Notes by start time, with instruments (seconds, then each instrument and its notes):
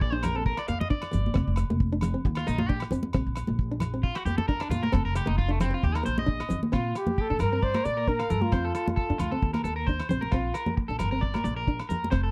Already playing: upright bass A#1
0.01 clean electric guitar D5, kick
0.13 nylon-string guitar D4, clean electric guitar C5
0.23 clean electric guitar A#4, cross-stick, closed hi-hat, low conga, low agogo
0.35 nylon-string guitar C4, clean electric guitar A4
0.46 clean electric guitar A#4, kick
0.57 clean electric guitar D5, cross-stick, low agogo
0.68 upright bass F2, nylon-string guitar A#3, clean electric guitar F5, closed hi-hat
0.81 clean electric guitar D#5, high conga, low conga
0.90 nylon-string guitar D4, clean electric guitar D5, kick
1.02 cross-stick, low agogo
1.11 upright bass G1, nylon-string guitar A#3, closed hi-hat, low conga
1.26 high conga
1.34 upright bass F1, nylon-string guitar C4, kick, cross-stick, low agogo
1.47 upright bass F1
1.56 cross-stick, closed hi-hat, low agogo
1.70 upright bass F1, nylon-string guitar A#3, high conga
1.80 kick
1.93 nylon-string guitar D4
2.01 cross-stick, closed hi-hat, low conga, low agogo
2.14 nylon-string guitar C4
2.25 upright bass D#2, kick
2.35 clean electric guitar F4, cross-stick, low agogo
2.47 upright bass A#1, nylon-string guitar A#3, clean electric guitar D#4, closed hi-hat
2.58 clean electric guitar F4, high conga, low conga
2.69 nylon-string guitar D4, clean electric guitar G4, kick
2.80 cross-stick, low agogo
2.91 upright bass F2, nylon-string guitar C4, closed hi-hat, low conga
3.03 high conga
3.13 upright bass A#1, nylon-string guitar C4, kick, cross-stick, low agogo
3.26 upright bass A#1
3.36 cross-stick, closed hi-hat, low agogo
3.47 upright bass A#1, nylon-string guitar A#3, high conga
3.59 kick
3.71 nylon-string guitar D4
3.80 cross-stick, closed hi-hat, low conga, low agogo
3.94 nylon-string guitar C4
4.03 clean electric guitar F4, kick
4.15 clean electric guitar F#4, cross-stick, low agogo
4.25 upright bass F2, nylon-string guitar A#3, clean electric guitar G4, closed hi-hat
4.38 clean electric guitar A4, high conga, low conga
4.48 nylon-string guitar D4, clean electric guitar A#4, kick
4.60 clean electric guitar D4, cross-stick, low agogo
4.70 upright bass A#2, nylon-string guitar A#3, clean electric guitar F4, closed hi-hat, low conga
4.83 clean electric guitar A#4, high conga
4.92 upright bass F1, nylon-string guitar C4, clean electric guitar A4, kick, cross-stick, low agogo
5.05 upright bass F1, clean electric guitar A#4
5.15 clean electric guitar G4, cross-stick, closed hi-hat, low agogo
5.26 upright bass F1, nylon-string guitar A#3, clean electric guitar D#4, high conga
5.38 clean electric guitar F4, kick
5.49 clean electric guitar A3, nylon-string guitar D4
5.60 clean electric guitar C4, cross-stick, closed hi-hat, low conga, low agogo
5.71 nylon-string guitar C4, clean electric guitar F4
5.83 upright bass D#2, clean electric guitar G4, kick
5.95 clean electric guitar A#4, cross-stick, low agogo
6.03 upright bass A#1, nylon-string guitar A#3, clean electric guitar C5, closed hi-hat
6.18 clean electric guitar D#5, high conga
6.26 nylon-string guitar D4, kick
6.40 cross-stick, low agogo
6.49 upright bass D#3, nylon-string guitar C4, closed hi-hat, low conga
6.63 high conga
6.72 upright bass A#2, nylon-string guitar C4, clean electric guitar F4, kick, cross-stick, low agogo
6.95 trumpet G4, cross-stick, closed hi-hat, low agogo
7.07 nylon-string guitar A#3, high conga, low conga
7.18 clean electric guitar G4, trumpet A4, kick
7.30 upright bass A#2, nylon-string guitar D4, clean electric guitar A4
7.39 upright bass G2, clean electric guitar A#4, trumpet A#4, cross-stick, closed hi-hat, low conga, low agogo
7.53 nylon-string guitar C4, clean electric guitar A#4
7.62 trumpet C5, clean electric guitar D5, kick
7.74 clean electric guitar A#4, cross-stick, high conga, low agogo
7.84 upright bass A#2, nylon-string guitar A#3, trumpet D5, clean electric guitar D5, closed hi-hat
7.97 clean electric guitar A#4
8.08 nylon-string guitar D4, trumpet A#4, kick
8.19 clean electric guitar F5, cross-stick, low agogo
8.30 upright bass G2, trumpet A4, clean electric guitar A#4, closed hi-hat, low conga
8.42 trumpet F4, high conga
8.52 upright bass F2, nylon-string guitar C4, clean electric guitar C5, kick, cross-stick, low agogo
8.65 clean electric guitar A4
8.75 clean electric guitar A4, cross-stick, closed hi-hat, low agogo
8.86 nylon-string guitar A#3, muted clean electric guitar stroke, high conga, low conga
8.96 clean electric guitar A4, kick
9.09 upright bass F2, nylon-string guitar D4
9.18 upright bass D2, clean electric guitar F4, cross-stick, closed hi-hat, low conga, low agogo
9.31 nylon-string guitar C4, clean electric guitar A4
9.42 upright bass D#2, kick
9.53 clean electric guitar A#4, cross-stick, high conga, low agogo
9.64 upright bass D#2, nylon-string guitar A#3, clean electric guitar A4, closed hi-hat
9.76 clean electric guitar A#4
9.87 nylon-string guitar D4, clean electric guitar C5, kick
10.00 cross-stick, low agogo
10.09 upright bass A#1, nylon-string guitar C4, clean electric guitar C5, closed hi-hat, low conga
10.21 clean electric guitar A#4, high conga
10.31 upright bass A#1, nylon-string guitar C4, clean electric guitar F4, kick, cross-stick, low agogo
10.54 clean electric guitar A#4, cross-stick, closed hi-hat, low agogo
10.66 nylon-string guitar A#3, high conga, low conga
10.77 muted clean electric guitar stroke, kick
10.88 upright bass A#1, nylon-string guitar D4, clean electric guitar A4
10.99 upright bass G1, clean electric guitar A#4, cross-stick, closed hi-hat, low conga, low agogo
11.11 nylon-string guitar C4, clean electric guitar A#4
11.21 clean electric guitar D5, kick
11.34 clean electric guitar A#4, cross-stick, high conga, low agogo
11.44 upright bass A#1, nylon-string guitar A#3, clean electric guitar D5, closed hi-hat
11.56 clean electric guitar A#4
11.68 nylon-string guitar D4, kick
11.79 cross-stick, low agogo
11.89 upright bass F2, nylon-string guitar A#3, clean electric guitar A#4, closed hi-hat, low conga
12.04 high conga
12.11 upright bass F1, nylon-string guitar C4, clean electric guitar C5, kick, cross-stick, low agogo
12.23 clean electric guitar A4